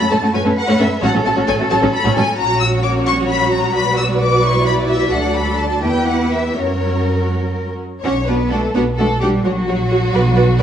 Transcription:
0.00 0.05 A3 medium
0.00 0.05 C#4 medium
0.00 0.34 A4 medium
0.00 0.11 B5 medium
0.11 0.16 F#2 medium
0.11 0.16 A3 soft
0.11 0.16 C#4 soft
0.11 0.16 C#4 medium
0.11 0.15 A4 medium
0.11 0.34 A5 medium
0.22 0.27 F#2 medium
0.22 0.27 A3 medium
0.22 0.27 C#4 medium
0.22 0.27 F#4 medium
0.34 0.39 F#2 medium
0.34 0.39 A3 medium
0.34 0.39 C#4 medium
0.34 0.38 F#4 medium
0.34 1.01 B4 medium
0.34 0.38 C#5 medium
0.34 0.42 G#5 medium
0.45 0.50 F#2 medium
0.45 0.50 A3 medium
0.45 0.50 C#4 medium
0.45 0.50 A4 medium
0.57 0.79 F#5 medium
0.68 0.73 F#2 medium
0.68 0.73 A3 medium
0.68 0.73 C#4 medium
0.68 0.73 F#4 medium
0.68 0.73 C#5 medium
0.79 0.84 F#2 medium
0.79 0.85 A3 medium
0.79 0.84 C#4 medium
0.79 0.84 A4 medium
0.79 1.03 E5 medium
1.02 1.07 A1 medium
1.02 1.08 F#3 medium
1.02 1.08 C#4 medium
1.02 1.07 F#4 medium
1.02 2.36 A4 medium
1.02 1.06 C#5 medium
1.02 1.11 F#5 loud
1.14 1.19 A1 medium
1.14 1.19 F#3 medium
1.14 1.19 C#4 soft
1.14 1.19 A4 medium
1.25 1.30 A1 medium
1.25 1.30 F#3 medium
1.25 1.30 A3 medium
1.25 1.30 C#4 medium
1.25 1.30 F#4 medium
1.25 1.33 A5 medium
1.35 1.41 A1 medium
1.35 1.41 F#3 medium
1.35 1.41 C#4 medium
1.35 1.40 F#4 medium
1.35 1.40 C#5 medium
1.47 1.52 A1 medium
1.47 1.52 F#3 medium
1.47 1.52 C#4 medium
1.47 1.52 A4 medium
1.47 1.55 G#5 medium
1.59 1.64 A1 medium
1.59 1.64 F#3 medium
1.59 1.64 A3 medium
1.59 1.64 C#4 medium
1.59 1.64 F#4 medium
1.70 1.75 A1 medium
1.70 1.75 F#3 medium
1.70 1.75 C#4 medium
1.70 1.75 F#4 medium
1.70 1.75 C#5 medium
1.70 1.78 A5 medium
1.82 1.87 A1 medium
1.82 1.87 F#3 medium
1.82 1.87 C#4 medium
1.82 1.86 A4 medium
1.94 2.16 B5 loud
2.05 2.09 A1 medium
2.05 2.09 F#3 medium
2.05 2.10 C#4 medium
2.05 2.09 F#4 medium
2.05 2.09 C#5 medium
2.16 2.21 A1 medium
2.16 2.21 F#3 medium
2.16 2.21 C#4 medium
2.16 2.21 A4 medium
2.16 2.38 G#5 medium
2.38 3.71 A#1 medium
2.38 5.08 F#3 medium
2.38 3.71 C#4 medium
2.38 3.70 F#4 medium
2.38 3.06 F#4 medium
2.38 3.70 C#5 medium
2.38 2.60 A#5 loud
2.60 2.68 E6 medium
2.83 2.91 D6 medium
3.07 4.41 F#4 medium
3.07 3.15 C#6 loud
3.29 3.51 B5 loud
3.51 3.74 A#5 medium
3.74 5.12 B1 medium
3.74 5.79 F#4 medium
3.74 5.08 B4 medium
3.74 5.79 D5 medium
3.74 3.97 B5 loud
3.97 4.05 E6 medium
4.21 4.43 D6 medium
4.43 5.11 E4 medium
4.43 4.66 C#6 loud
4.66 4.74 B5 medium
4.89 5.12 E5 medium
5.12 5.83 D2 medium
5.12 5.79 F#3 medium
5.12 5.82 D4 medium
5.12 5.79 A4 medium
5.12 5.35 F#5 medium
5.34 5.58 B5 medium
5.58 5.83 A5 medium
5.83 6.56 E2 medium
5.83 6.52 B3 medium
5.83 6.52 E4 medium
5.83 6.52 G4 medium
5.83 6.56 B4 medium
5.83 6.52 B4 medium
5.83 6.07 G5 medium
6.07 6.31 F#5 medium
6.31 6.56 E5 medium
6.56 7.83 F#2 medium
6.56 7.79 F#3 medium
6.56 7.79 C#4 medium
6.56 7.79 F#4 medium
6.56 7.79 A#4 medium
6.56 7.65 A#4 medium
6.56 7.31 C#5 medium
8.03 8.66 B1 medium
8.03 8.12 C#4 medium
8.03 8.12 D4 medium
8.03 8.12 F#4 medium
8.03 8.25 C#5 medium
8.03 8.12 F#5 medium
8.27 8.51 B3 medium
8.27 8.36 D4 medium
8.27 8.36 F#4 medium
8.27 8.51 B4 medium
8.27 8.36 F#5 medium
8.51 8.75 A3 medium
8.51 8.59 D4 medium
8.51 8.59 F#4 medium
8.51 8.74 A4 medium
8.51 8.59 F#5 medium
8.74 9.36 B1 medium
8.74 8.83 B3 medium
8.74 8.83 D4 medium
8.74 8.83 F#4 medium
8.74 8.82 B4 medium
8.74 8.82 F#5 medium
8.97 9.07 A3 medium
8.97 9.06 D4 medium
8.97 9.06 F#4 medium
8.97 9.20 A4 medium
8.97 9.06 F#5 medium
9.20 9.44 G3 medium
9.20 9.30 D4 medium
9.20 9.30 F#4 medium
9.20 9.28 G4 medium
9.20 9.29 F#5 medium
9.43 10.05 A#1 medium
9.43 10.63 F#3 medium
9.43 10.63 F#4 medium
9.43 9.53 F#4 medium
9.43 9.53 C#5 medium
9.68 9.76 F#4 medium
9.68 9.76 C#5 medium
9.90 9.99 F#4 medium
9.90 9.98 C#5 medium
10.13 10.63 B1 medium
10.13 10.22 F#4 medium
10.13 10.21 B4 medium
10.13 10.21 D5 medium
10.35 10.44 F#4 medium
10.35 10.44 B4 medium
10.35 10.43 D5 medium
10.58 10.63 F#4 medium
10.58 10.63 B4 medium
10.58 10.63 D5 medium

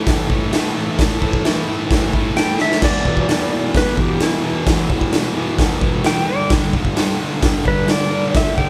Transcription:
0.06 0.27 A2 loud
0.06 0.29 E3 loud
0.06 0.29 A3 loud
0.06 kick loud
0.06 snare loud
0.06 open hi-hat medium
0.28 0.51 A2 medium
0.28 0.52 E3 medium
0.28 0.52 A3 loud
0.28 kick medium
0.52 0.74 A2 medium
0.52 0.75 E3 medium
0.52 0.76 A3 loud
0.52 snare loud
0.52 open hi-hat medium
0.75 0.96 A2 medium
0.75 0.97 E3 medium
0.75 0.97 A3 loud
0.97 1.19 A2 loud
0.97 1.22 E3 loud
0.97 1.21 A3 loud
0.97 kick loud
0.97 snare loud
0.97 open hi-hat medium
1.21 1.44 A2 loud
1.21 1.45 E3 loud
1.21 1.45 A3 medium
1.21 kick medium
1.33 kick medium
1.45 1.66 A2 medium
1.45 1.69 E3 medium
1.45 1.68 A3 medium
1.45 snare loud
1.45 open hi-hat medium
1.67 1.90 A2 medium
1.67 1.92 E3 medium
1.67 1.92 A3 medium
1.91 2.12 A2 medium
1.91 2.14 E3 loud
1.91 2.14 A3 loud
1.91 kick loud
1.91 snare loud
1.91 open hi-hat medium
2.13 2.35 A2 medium
2.13 2.36 E3 medium
2.13 2.37 A3 loud
2.13 kick medium
2.36 2.58 A2 medium
2.36 2.60 E3 medium
2.36 2.59 A3 medium
2.36 2.59 G5 medium
2.36 snare loud
2.36 open hi-hat medium
2.59 2.81 A2 medium
2.59 2.85 E3 medium
2.59 2.82 A3 medium
2.59 2.83 E5 loud
2.59 snare medium
2.72 snare medium
2.82 3.06 E2 loud
2.82 3.06 B2 loud
2.82 3.07 E3 loud
2.82 3.73 D5 loud
2.82 kick loud
2.82 snare loud
2.82 crash loud
3.05 3.28 E2 medium
3.05 3.27 B2 loud
3.05 3.28 E3 loud
3.05 kick medium
3.17 kick medium
3.28 3.50 E2 medium
3.28 3.51 B2 medium
3.28 3.52 E3 medium
3.28 snare loud
3.28 open hi-hat medium
3.52 3.73 E2 medium
3.52 3.74 B2 medium
3.52 3.75 E3 medium
3.74 3.97 E2 medium
3.74 3.97 B2 loud
3.74 3.98 E3 loud
3.74 3.99 B4 medium
3.74 kick loud
3.74 snare loud
3.74 open hi-hat medium
3.97 4.19 E2 medium
3.97 4.20 B2 medium
3.97 4.21 E3 loud
3.97 4.21 G4 medium
3.97 kick medium
4.20 4.41 E2 medium
4.20 4.42 B2 medium
4.20 4.42 E3 medium
4.20 5.11 E4 medium
4.20 snare loud
4.20 open hi-hat medium
4.42 4.64 E2 medium
4.42 4.65 B2 medium
4.42 4.66 E3 loud
4.66 4.87 E2 loud
4.66 4.88 B2 medium
4.66 4.89 E3 loud
4.66 kick loud
4.66 snare loud
4.66 open hi-hat medium
4.88 5.11 E2 medium
4.88 5.11 B2 medium
4.88 5.12 E3 loud
4.88 kick medium
5.01 kick medium
5.12 5.34 E2 medium
5.12 5.35 B2 medium
5.12 5.36 E3 loud
5.12 snare loud
5.12 open hi-hat medium
5.35 5.56 E2 medium
5.35 5.57 B2 medium
5.35 5.58 E3 loud
5.57 5.79 E2 loud
5.57 5.80 B2 loud
5.57 5.81 E3 loud
5.57 kick loud
5.57 snare loud
5.57 open hi-hat medium
5.81 6.02 E2 medium
5.81 6.03 B2 medium
5.81 6.04 E3 loud
5.81 kick medium
6.03 6.26 E2 medium
6.03 6.27 B2 medium
6.03 6.27 E3 medium
6.03 6.28 G5 loud
6.03 snare loud
6.03 open hi-hat medium
6.26 6.49 G2 loud
6.26 6.50 D3 loud
6.26 6.51 G3 loud
6.26 6.51 D5 loud
6.50 6.74 G2 loud
6.50 6.74 D3 loud
6.50 6.76 G3 loud
6.50 kick loud
6.50 snare loud
6.50 open hi-hat medium
6.73 6.94 G2 medium
6.73 6.95 D3 loud
6.73 6.96 G3 loud
6.73 kick medium
6.85 kick medium
6.95 7.19 G2 medium
6.95 7.19 D3 medium
6.95 7.20 G3 loud
6.95 snare loud
6.95 open hi-hat medium
7.19 7.41 G2 medium
7.19 7.41 D3 loud
7.19 7.42 G3 loud
7.42 7.64 G2 loud
7.42 7.65 D3 loud
7.42 7.66 G3 loud
7.42 kick loud
7.42 snare loud
7.42 open hi-hat medium
7.65 7.86 G2 medium
7.65 7.86 D3 loud
7.65 7.87 G3 medium
7.65 7.89 B4 medium
7.65 kick medium
7.87 8.09 G2 medium
7.87 8.10 D3 medium
7.87 8.10 G3 loud
7.87 snare loud
7.87 open hi-hat medium
7.91 8.35 D5 medium
8.11 8.32 G2 medium
8.11 8.32 D3 medium
8.11 8.33 G3 medium
8.33 8.56 G2 loud
8.33 8.56 D3 loud
8.33 8.57 G3 loud
8.33 8.58 E5 medium
8.33 kick loud
8.33 snare loud
8.33 open hi-hat medium
8.57 8.69 G2 medium
8.57 8.69 D3 loud
8.57 8.69 G3 medium
8.57 8.69 G5 medium
8.57 kick medium

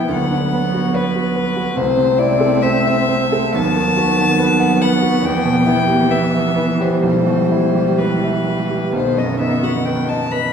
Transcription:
0.00 0.13 E2 soft
0.00 0.14 B2 soft
0.00 0.13 B3 soft
0.00 1.74 B3 soft
0.00 0.14 E4 soft
0.00 0.13 B4 soft
0.00 0.10 G5 medium
0.09 1.73 D2 soft
0.09 1.73 F#3 soft
0.09 0.97 F#5 medium
0.31 0.66 D3 soft
0.53 0.87 B3 soft
0.74 1.08 F#4 soft
0.94 1.28 B4 soft
0.94 1.78 B4 medium
1.16 1.49 F#4 soft
1.36 1.69 B4 soft
1.57 1.78 F#4 soft
1.77 3.50 C2 soft
1.77 3.50 A3 soft
1.77 3.50 C4 medium
1.77 2.20 C5 medium
1.97 2.32 C3 soft
2.19 2.54 E4 soft
2.19 2.64 D5 medium
2.40 2.76 A4 soft
2.62 2.99 C5 soft
2.62 3.54 E5 medium
2.85 3.23 E5 soft
3.08 3.46 C5 soft
3.32 3.55 A4 soft
3.54 5.20 D#2 medium
3.54 5.21 F#3 soft
3.54 7.00 B3 medium
3.54 4.83 A5 medium
3.77 4.10 D#3 soft
3.97 4.31 F#4 soft
4.18 4.52 D#3 soft
4.39 4.73 B4 soft
4.60 4.94 F#5 soft
4.81 5.16 B4 soft
4.81 5.27 F#5 medium
5.02 5.24 F#4 soft
5.22 6.99 E2 soft
5.22 8.91 E3 medium
5.22 6.12 G5 medium
5.45 5.80 B2 soft
5.66 6.02 E4 soft
5.87 6.24 G4 soft
6.11 6.48 B4 soft
6.11 6.83 E5 medium
6.33 6.71 E5 soft
6.56 6.94 B4 soft
6.80 7.04 G4 soft
6.80 7.03 C5 medium
7.03 8.90 B1 soft
7.03 8.90 G3 soft
7.03 8.00 C5 medium
7.27 7.65 B2 soft
7.51 7.90 E4 soft
7.75 8.14 G4 soft
7.98 8.93 B4 soft
7.98 8.37 B4 soft
8.24 8.62 E5 soft
8.47 8.84 B4 soft
8.69 8.93 G4 soft
8.93 10.53 B1 soft
8.93 10.53 D#3 soft
8.93 10.53 B3 soft
8.93 9.19 C5 medium
9.17 9.54 F#2 soft
9.17 9.40 D#5 medium
9.40 9.77 D#4 soft
9.40 9.65 E5 medium
9.63 10.00 F#4 soft
9.63 9.87 F#5 medium
9.85 10.24 B4 soft
9.85 10.10 G5 medium
10.09 10.47 D#5 soft
10.09 10.33 A5 medium
10.32 10.53 B4 soft
10.32 10.53 B5 medium

